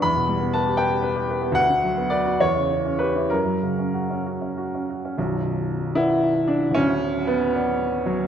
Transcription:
\new Staff \with { instrumentName = "Grand piano" } { \time 6/8 \key b \minor \tempo 4. = 75 << { b''4 a''8 g''8 r4 | fis''4 d''8 cis''4 b'8 | ais'4. r4. | r4. e'4 d'8 |
cis'4 b4. fis8 | } \\ { e,16 b,16 g16 b16 b'16 g'16 b'16 g'16 b'16 g'16 b'16 b16 | d,16 d16 fis16 b16 b'16 fis'16 e,16 cis16 e16 cis'16 g'16 e'16 | fis,16 fis16 cis16 cis'16 fis'16 cis'16 fis'16 cis'16 fis'16 cis'16 fis'16 cis'16 | <b,,, b,,>4. <b' d'' fis''>4. |
<d,, d,>4. <b' d'' fis''>4. | } >> }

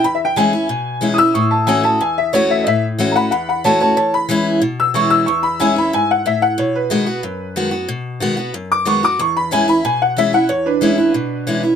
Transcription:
<<
  \new Staff \with { instrumentName = "Upright piano" } { \time 4/4 \key e \major \tempo 4 = 184 \tuplet 3/2 { b''8 e''8 g''8 } gis''2 r8 <dis''' e'''>8 | cis'''8 a''8 gis''8 a''8 gis''8 e''8 cis''8 e''8 | <dis'' e''>8 r4 <fis'' ais'' b''>8 <fis'' b''>8 <fis'' b''>8 <cis'' a''>8 <cis'' a''>8 | <cis'' a''>8 b''4 r4 e'''8 cis'''8 e'''8 |
cis'''8 b''8 gis''8 b''8 gis''8 fis''8 e''8 fis''8 | cis''8 b'2. r8 | r2 r8 d'''8 cis'''8 d'''8 | cis'''8 b''8 gis''8 b''8 gis''8 fis''8 e''8 fis''8 |
cis''8 <d' b'>2. r8 | }
  \new Staff \with { instrumentName = "Steel-string acoustic guitar" } { \time 4/4 \key e \major << { r4 <e gis cis' e'>8 <cis' e'>8 r4 <e gis cis' e'>8 <cis' e'>8 | r4 <e a cis' fis'>8 <cis' fis'>8 r4 <e a cis' fis'>4 | r4 <e a cis' fis'>8 fis'8 r4 <e a cis' fis'>8 <cis' fis'>8 | r4 <e gis cis' e'>4 r4 <e gis cis' e'>4 |
r4 <e gis cis' e'>8 <cis' e'>8 r2 | r4 <dis gis b fis'>8 <b fis'>8 r4 <dis gis b fis'>8 <b fis'>8 | r4 <dis gis b fis'>8 <b fis'>8 r4 <dis gis b fis'>8 <b fis'>8 | r4 <e gis cis' e'>8 <cis' e'>8 r4 <e gis cis' e'>8 <cis' e'>8 |
r4 <e gis cis' e'>8 <cis' e'>8 r4 <e gis cis' e'>8 <cis' e'>8 | } \\ { e,2 b,2 | a,2 r2 | a,2 e,2 | e,2 b,2 |
e,2 gis,4 a,4 | b,2 fis,2 | b,2 fis,2 | e,2 b,2 |
e,2 b,2 | } >> }
>>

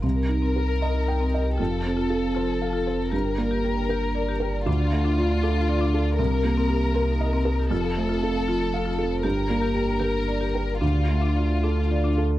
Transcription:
<<
  \new Staff \with { instrumentName = "Violin section" } { \time 3/4 \key c \dorian \tempo 4 = 117 bes'2. | a'2. | bes'2. | f'2. |
bes'2. | a'2. | bes'2. | f'2~ f'8 r8 | }
  \new Staff \with { instrumentName = "Felt piano" } { \time 3/4 \key c \dorian c,8 ees'8 bes'8 ees''8 g''8 ees''8 | f,8 c'8 a'8 c''8 f''8 c''8 | g,8 bes8 g'8 bes'8 d''8 bes'8 | d,8 a8 f'8 a'8 d''8 a'8 |
c,8 bes8 g'8 bes'8 ees''8 bes'8 | f,8 a8 a'8 f'8 f''8 a'8 | g,8 bes8 g'8 bes'8 d''8 bes'8 | d,8 a8 f'8 a'8 d''8 a'8 | }
  \new Staff \with { instrumentName = "Marimba" } { \time 3/4 \key c \dorian c'16 bes'16 g'16 c'16 bes'16 bes'16 c'16 ees'16 ees'16 c'16 bes'16 g'16 | f'16 f''16 c''16 f'16 f''16 f''16 f'16 a'16 a'16 f'16 f''16 c''16 | g'16 g''16 d''16 g'16 g''16 g''16 g'16 bes'16 bes'16 g'16 g''16 d''16 | d'16 d''16 a'16 d'16 d''16 d''16 d'16 f'16 f'16 d'16 d''16 a'16 |
c'16 bes'16 g'16 c'16 bes'16 bes'16 c'16 ees'16 ees'16 c'16 bes'16 g'16 | f'16 f''16 c''16 f'16 f''16 f''16 f'16 a'16 a'16 f'16 f''16 c''16 | g'16 g''16 d''16 g'16 g''16 g''16 g'16 bes'16 bes'16 g'16 g''16 d''16 | d'16 d''16 a'16 d'16 d''16 d''16 d'16 f'16 f'16 d'16 d''16 a'16 | }
  \new Staff \with { instrumentName = "Sub bass" } { \clef bass \time 3/4 \key c \dorian c,2. | f,,2. | g,,2. | d,2. |
c,2. | f,,2. | g,,2. | d,2. | }
>>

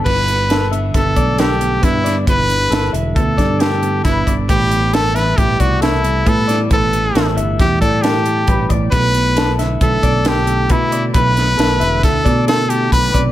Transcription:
<<
  \new Staff \with { instrumentName = "Clean electric guitar" } { \time 5/4 \key g \major \tempo 4 = 135 b'4 a'8 e''4 d''8 a'4 b'8 d''8 | b'4 a'8 e''4 d''8 a'4 b'8 d''8 | b'4 a'8 e''4 d''8 a'4 b'8 d''8 | b'4 a'8 e''4 d''8 a'4 b'8 d''8 |
b'4 a'8 e''4 d''8 a'4 b'8 d''8 | b'4 a'8 e''4 d''8 a'4 b'8 d''8 | }
  \new Staff \with { instrumentName = "Trumpet" } { \time 5/4 \key g \major b'4. r8 a'4 g'4 e'8. r16 | b'4. r8 a'4 g'4 e'8. r16 | g'4 a'8 b'8 g'8 fis'8 e'4 a'8. r16 | a'4. r8 g'8 a'8 g'4. r8 |
b'4. r8 a'4 g'4 e'8. r16 | b'2 a'4 a'8 g'8 b'8. r16 | }
  \new Staff \with { instrumentName = "Clean electric guitar" } { \time 5/4 \key g \major << { <b d' e'>8 d'8 d'16 e'8. b4 d'16 e'16 b8 <b d'>8 d'8 | <b d' e'>8 d'8 e'4 b4 d'16 e'16 b8 <b d'>8 d'8 | <g b e'>8 b8 d'16 e'8. g4 b8 g8 <g b e'>8 b8 | <g b e'>8 b8 e'4 g4 e'8 g4. |
<a b e'>8 b8 e'4 a4 e'8 a8 <a b>8 b8 | <a b e'>8 b8 e'4 a4 e'8 a4. | } \\ { <g, d>4. d4 d,4. g,4 | g,4. d4 d,4. g,4 | a,4. e4 e,4. a,4 | a,4. e4 e,4. g,8 a,8 |
b,4. d4 b,4. b,4 | b,4. d4 b,4. b,8 c8 | } >> }
  \new Staff \with { instrumentName = "Fingered electric bass" } { \clef bass \time 5/4 \key g \major g,,2 g,,8 b,,4. g,4 | g,,4 g,,8 e,,8 d,8 g,4. g,,8 g,,8 | a,,2 a,,8 c,4. a,4 | a,,4 a,,8 g,,8 e,8 a,4. a,,8 a,,8 |
b,,2 b,,8 b,,4. b,4 | b,,4 b,,8 e,,8 d,8 b,4. b,,8 b,,8 | }
  \new DrumStaff \with { instrumentName = "Drums" } \drummode { \time 5/4 <cymc bd>8 hh8 <hh sn>8 hh8 <hh bd sn>8 <hh bd>8 <hh sn>8 hh8 <hh bd sn>8 <hh sn>8 | <hh bd>8 hh8 <hh sn>8 hh8 <hh bd>8 <hh bd sn>8 <hh sn>8 hh8 <hh bd sn>8 <hh bd>8 | <hh bd>8 hh8 <hh sn>8 <hh sn>8 <hh bd>8 <hh bd>8 <hh sn>8 hh8 <hh bd>8 <hh sn>8 | <hh bd>8 hh8 <hh sn>8 hh8 <hh bd sn>8 <hh bd>8 <hh sn>8 hh8 <hh bd>8 <hh bd>8 |
<hh bd>8 hh8 <hh sn>8 <hh sn>8 <hh bd>8 <hh bd>8 <hh sn>8 hh8 <hh bd>8 hh8 | <hh bd>8 <hh sn>8 <hh sn>8 hh8 <hh bd sn>8 <hh bd>8 <hh sn>8 hh8 <hh bd>8 <hh bd>8 | }
>>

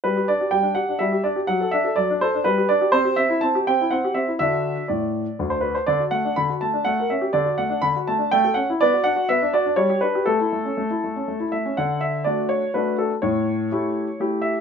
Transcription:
\new Staff \with { instrumentName = "Grand piano" } { \time 3/4 \key g \major \tempo 4 = 123 << { b'8 d''8 g''8 fis''8 e''8 d''8 | fis''8 e''8 d''8 c''8 b'8 d''8 | c''8 e''8 a''8 g''8 fis''8 e''8 | e''4 d''4~ d''16 c''16 b'16 c''16 |
\key d \major d''8 fis''8 b''8 a''8 fis''8 e''8 | d''8 fis''8 b''8 a''8 g''8 fis''8 | d''8 fis''8 e''8 d''8 cis''8 b'8 | a'2~ a'8 e''8 |
fis''8 e''8 d''8 cis''8 b'8 a'8 | cis''2 r8 e''8 | } \\ { g16 g'16 d'16 g'16 g16 d'16 g'16 d'16 g16 g'16 d'16 g'16 | fis16 a'16 d'16 a'16 fis16 d'16 a'16 d'16 g16 g'16 d'16 g'16 | c'16 g'16 c'16 e'16 c'16 g'16 c'16 e'16 c'16 g'16 c'16 e'16 | <d d' fis'>4 a,4 d,4 |
d16 fis'16 a16 d'16 d16 fis'16 a16 d'16 a16 bes'16 cis'16 g'16 | d16 fis'16 a16 d'16 d16 fis'16 a16 d'16 a16 a'16 cis'16 e'16 | b16 fis'16 d'16 fis'16 b16 d'16 fis'16 d'16 g16 g'16 d'16 g'16 | a16 e'16 a16 cis'16 a16 e'16 a16 cis'16 a16 e'16 a16 cis'16 |
d4 <a d' fis'>4 <a d' fis'>4 | a,4 <a e' g'>4 <a e' g'>4 | } >> }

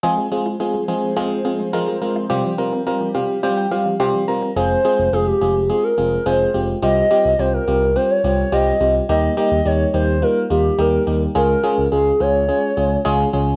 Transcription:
<<
  \new Staff \with { instrumentName = "Soft synth lead" } { \time 4/4 \key f \minor \tempo 4 = 106 r1 | r1 | c''4 aes'16 g'8. aes'16 bes'8. c''8. r16 | ees''4 c''16 bes'8. c''16 des''8. ees''8. r16 |
ees''8 ees''8 des''8 c''8 bes'8 g'8 bes'8. r16 | bes'4 aes'8 des''2 r8 | }
  \new Staff \with { instrumentName = "FM electric piano" } { \time 4/4 \key f \minor << { r1 | r4. f''8 g''16 g''16 f''8 c'''8 bes''8 | r1 | r1 |
r1 | r1 | } \\ { <aes c' f' aes'>8 <aes c' f' aes'>8 <aes c' f' aes'>8 <aes c' f' aes'>8 <aes c' f' aes'>8 <aes c' f' aes'>8 <aes c' f' bes'>8 <aes c' f' bes'>8 | <g c' f' g'>8 <g c' f' bes'>8 <g c' f' bes'>8 <g c' f' g'>8 <g c' f' g'>8 <g c' f' g'>8 <g c' f' g'>8 <g c' f' bes'>8 | <aes c' f' aes'>8 <aes c' f' aes'>8 <aes c' f' aes'>8 <aes c' f' aes'>8 <aes c' f' aes'>8 <aes c' f' aes'>8 <aes c' f' aes'>8 <aes c' f' g'>8 | <g c' f' g'>8 <g c' f' g'>8 <g c' f' g'>8 <g c' f' g'>8 <g c' f' g'>8 <g c' f' g'>8 <g c' f' g'>8 <g c' f' g'>8 |
<g bes ees' g'>8 <g bes ees' g'>8 <g bes ees' g'>8 <g bes ees' g'>8 <g bes ees' f'>8 <g bes ees' f'>8 <g bes ees' g'>8 <g bes ees' g'>8 | <aes des' f' aes'>8 <aes des' f' aes'>8 <aes des' f' aes'>8 <aes des' f' aes'>8 <aes des' f' aes'>8 <aes des' f' aes'>8 <aes des' f' aes'>8 <aes des' f' aes'>8 | } >> }
  \new Staff \with { instrumentName = "Analog synth pad" } { \time 4/4 \key f \minor << { <f c' c''>1~ | <f c' c''>1 | r1 | r1 |
r1 | r1 | } \\ { <aes aes'>1 | <g g'>1 | r1 | r1 |
r1 | r1 | } >> }
  \new Staff \with { instrumentName = "Synth arpeggio sound" } { \clef bass \time 4/4 \key f \minor f16 aes16 r16 f'16 c'16 aes16 f16 r16 c'16 r16 c'16 aes16 f16 aes16 r16 f'16 | c16 f16 r16 c'16 g16 f16 c16 r16 g16 r16 g16 f16 c16 f16 r16 c'16 | r1 | r1 |
r1 | r1 | }
  \new Staff \with { instrumentName = "Analog synth bass" } { \clef bass \time 4/4 \key f \minor r1 | r1 | f,,8 r16 f,,16 f,,8 f,,8. r16 f,,8 f,,8 f,,8 | c,8 r16 c,16 c,8 c,8. r16 c,8 c,8 c,8 |
ees,8 r16 ees,16 ees,8 ees,8. r16 ees,8 ees,8 ees,8 | des,8 r16 des,16 des,8 des,8. r16 des,8 des,8 des,8 | }
>>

